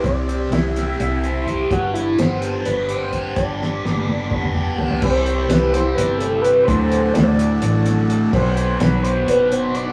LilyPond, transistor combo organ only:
\new Staff \with { instrumentName = "Transistor combo organ" } { \time 7/8 \key c \lydian \tempo 4 = 127 << { r2. r8 | r2. r8 | r2. r8 | <g g'>2.~ <g g'>8 |
<a a'>2.~ <a a'>8 | b''2.~ b''8 | } \\ { r2. r8 | r2. r8 | r2. r8 | <e c' e'>2.~ <e c' e'>8 |
<fis d' fis'>2.~ <fis d' fis'>8~ | <fis d' fis'>2.~ <fis d' fis'>8 | } >> }